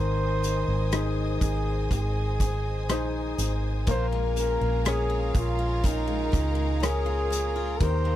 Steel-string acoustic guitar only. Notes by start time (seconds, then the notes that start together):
3.87 A#2 F4
4.12 G#3
4.37 C#4
4.61 G#3
4.86 C#4
5.10 F4
5.35 C#4
5.59 F4
5.84 A#2 F4
6.08 G#3
6.32 C#4
6.55 G#3
6.80 C#4
7.06 F4
7.30 C#4
7.56 F4
7.81 D#3 G4
8.05 A#3